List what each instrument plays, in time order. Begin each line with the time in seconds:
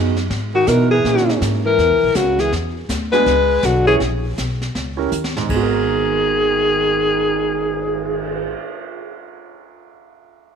Already playing: upright bass F#2, grand piano B3 D#4 F#4 G#4
0.17 snare
0.30 upright bass G#2, brush sweep, snare
0.54 tenor saxophone D#3, alto saxophone F#4
0.67 upright bass B2, tenor saxophone E3, grand piano B3 D#4 F#4 A#4, alto saxophone A#4, snare, hi-hat pedal
0.91 tenor saxophone E3, alto saxophone G#4
1.04 upright bass A#2, grand piano A#3 C#4 E4 G#4, brush sweep, snare
1.17 snare
1.29 snare
1.41 upright bass G#2, snare, hi-hat pedal
1.65 tenor saxophone E3, alto saxophone A#4
1.78 upright bass E2, brush sweep, snare
1.90 upright bass C#2
2.03 upright bass A#1
2.15 upright bass C#2, tenor saxophone C#3, alto saxophone F#4, snare, hi-hat pedal
2.39 tenor saxophone E3, alto saxophone G#4, snare
2.52 upright bass E2, brush sweep, snare
2.89 upright bass D2, snare, hi-hat pedal
3.12 tenor saxophone G#3, grand piano B3 D4 F#4 G#4, alto saxophone B4, snare
3.26 upright bass C#2, brush sweep, snare
3.63 upright bass B1, tenor saxophone D3, alto saxophone F#4, snare, hi-hat pedal
3.86 tenor saxophone E3, grand piano C#4 E4 G4 C#5, alto saxophone G#4
4.00 upright bass A#1, brush sweep, snare
4.38 upright bass B1, snare, hi-hat pedal
4.62 snare
4.75 upright bass C#2, brush sweep, snare
4.97 grand piano C#4 E4 G4 A#4
5.12 upright bass D#2, hi-hat pedal
5.24 snare
5.37 grand piano G#2, snare
5.44 grand piano G#3
5.49 upright bass G#1, tenor saxophone D#3, grand piano B3, alto saxophone G#4, kick, crash
5.56 grand piano F#4
5.63 grand piano A#4
5.73 cymbal swell